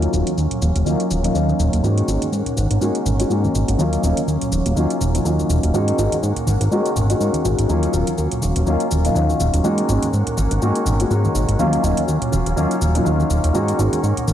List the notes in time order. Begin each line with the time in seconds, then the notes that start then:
Already playing: F#3 A#3 C#4 D#4 F4 F5
0.02 closed hi-hat, tambourine, shaker
0.12 D#1 F#3 A#3 C#4 D#4 F4, shaker
0.26 D#2, closed hi-hat, tambourine, high conga, shaker
0.37 D#2, shaker
0.51 closed hi-hat, tambourine, low conga, shaker
0.61 D#1 A#3 C#4 F4, high conga, shaker
0.75 D#1, closed hi-hat, tambourine, shaker
0.85 D#2 F#3 A#3 C#4 D#4 F4, tambourine, shaker
1.00 closed hi-hat, shaker
1.10 D#1, high conga, shaker
1.23 F#3 A#3 C#4 D#4 F4, closed hi-hat, tambourine, low conga, shaker
1.34 D#2 F#3 A#3 C#4 D#4 F4, shaker
1.48 tambourine, high conga, shaker
1.59 D#1, low conga, shaker
1.72 D#1, closed hi-hat, tambourine, shaker
1.82 G#2 D#3 G#3 A#3 C#4 D#4 F#4 A#4 F#5, tambourine, high conga, shaker
1.98 closed hi-hat, tambourine, shaker
2.07 G#1 G#3 A#3 C#4 D#4 F#4, shaker
2.22 G#2, closed hi-hat, tambourine, high conga, shaker
2.32 G#2, tambourine, shaker
2.46 closed hi-hat, tambourine, low conga, shaker
2.57 G#1, high conga, shaker
2.71 G#1, closed hi-hat, shaker
2.81 G#2 D#3 G#3 A#3 C#4 D#4 F#4, shaker
2.95 closed hi-hat, shaker
3.05 G#1, high conga, low conga, shaker
3.19 G#3 A#3 C#4 D#4 F#4, closed hi-hat, tambourine, shaker
3.29 G#2 D#3 G#3 A#3 C#4 D#4 F#4, tambourine, shaker
3.44 tambourine, high conga, shaker
3.54 G#1, low conga, shaker
3.68 G#1, closed hi-hat, shaker
3.78 D#2 F#3 A#3 C#4 D#4 F4 F5, tambourine, high conga, shaker
3.92 closed hi-hat, tambourine, shaker
4.03 D#1 F#3 A#3 C#4 D#4 F4, shaker
4.17 D#2, closed hi-hat, tambourine, high conga, shaker
4.27 D#2, tambourine, shaker
4.41 closed hi-hat, tambourine, low conga, shaker
4.52 D#1, high conga, shaker
4.66 D#1, closed hi-hat, shaker
4.75 D#2 F#3 A#3 C#4 D#4 F4, shaker
4.90 closed hi-hat, shaker
5.01 D#1, high conga, shaker
5.13 F#3 A#3 C#4 D#4 F4, closed hi-hat, tambourine, low conga, shaker
5.25 D#2 F#3 A#3 C#4 D#4 F4, shaker
5.39 tambourine, high conga, shaker
5.49 D#1, low conga, shaker
5.63 D#1, closed hi-hat, shaker
5.73 G#2 D#3 G#3 A#3 C#4 D#4 F#4 A#4 F#5, tambourine, high conga, shaker
5.88 closed hi-hat, shaker
5.98 G#1 G#3 A#3 C#4 D#4 F#4, shaker
6.12 G#2, closed hi-hat, tambourine, high conga, shaker
6.23 G#2, tambourine, shaker
6.36 closed hi-hat, tambourine, low conga, shaker
6.46 G#1 A#3 C#4 F#4, high conga, shaker
6.61 G#1, closed hi-hat, shaker
6.71 G#2 D#3 G#3 A#3 C#4 D#4 F#4, shaker
6.86 closed hi-hat, shaker
6.95 G#1, high conga, low conga, shaker
7.09 G#3 A#3 C#4 D#4 F#4, closed hi-hat, shaker
7.20 G#2 D#3 A#3 C#4 F#4, tambourine, shaker
7.33 closed hi-hat, tambourine, high conga, shaker
7.44 G#1 G#3 A#3 C#4 D#4 F#4, low conga, shaker
7.58 G#1, closed hi-hat, shaker
7.68 D#2 F#3 A#3 C#4 D#4 F4 F5, tambourine, high conga, shaker
7.83 closed hi-hat, tambourine, shaker
7.93 D#1 F#3 A#3 C#4 D#4 F4, shaker
8.07 D#2, closed hi-hat, tambourine, high conga, shaker
8.18 D#2, shaker
8.31 closed hi-hat, tambourine, low conga, shaker
8.42 D#1, high conga, shaker
8.56 D#1, closed hi-hat, shaker
8.66 D#2 F#3 A#3 C#4 D#4 F4, shaker
8.80 closed hi-hat, shaker
8.91 D#1, high conga, shaker
9.04 F#3 A#3 C#4 D#4 F4, closed hi-hat, tambourine, low conga, shaker
9.15 D#2 F#3 A#3 C#4 D#4 F4, shaker
9.29 tambourine, high conga, shaker
9.39 D#1, low conga, shaker
9.54 D#1, closed hi-hat, shaker
9.64 G#2 D#3 G#3 A#3 C#4 D#4 F#4 A#4 F#5, tambourine, high conga, shaker
9.78 closed hi-hat, tambourine, shaker
9.89 G#1 G#3 A#3 C#4 D#4 F#4, shaker
10.02 G#2, closed hi-hat, tambourine, high conga, shaker
10.13 G#2, tambourine, shaker
10.27 closed hi-hat, tambourine, low conga, shaker
10.37 G#1 A#3 C#4 F#4, high conga, shaker
10.51 G#1, closed hi-hat, tambourine, shaker
10.61 G#2 D#3 G#3 A#3 C#4 D#4 F#4, shaker
10.76 closed hi-hat, shaker
10.85 G#1, high conga, low conga, shaker
11.00 G#3 A#3 C#4 D#4 F#4, closed hi-hat, shaker
11.10 G#2 D#3 G#3 A#3 C#4 D#4 F#4, shaker
11.25 tambourine, high conga, shaker
11.35 G#1, low conga, shaker
11.49 G#1, closed hi-hat, shaker
11.59 D#2 F#3 A#3 C#4 D#4 F4 F5, tambourine, high conga, shaker
11.73 closed hi-hat, tambourine, shaker
11.83 D#1 F#3 A#3 C#4 D#4 F4, shaker
11.97 D#2, closed hi-hat, tambourine, high conga, shaker
12.07 D#2, tambourine, shaker
12.21 closed hi-hat, tambourine, low conga, shaker
12.32 D#1 A#3 C#4 F4, high conga, shaker
12.46 D#1, closed hi-hat, tambourine, shaker
12.56 D#2 F#3 A#3 C#4 D#4 F4, tambourine, shaker
12.71 closed hi-hat, shaker
12.81 D#1, high conga, shaker
12.95 F#3 A#3 C#4 D#4 F4, closed hi-hat, tambourine, low conga, shaker
13.05 D#2 F#3 A#3 C#4 D#4 F4, tambourine, shaker
13.19 tambourine, high conga, shaker
13.30 D#1, low conga, shaker
13.44 D#1, closed hi-hat, shaker
13.53 G#2 D#3 G#3 A#3 C#4 D#4 F#4 A#4 F#5, tambourine, high conga, shaker
13.68 closed hi-hat, tambourine, shaker
13.78 G#1 G#3 A#3 C#4 D#4 F#4, shaker
13.92 G#2, closed hi-hat, tambourine, high conga, shaker
14.03 G#2, tambourine, shaker
14.17 closed hi-hat, tambourine, low conga, shaker
14.27 G#1, high conga, shaker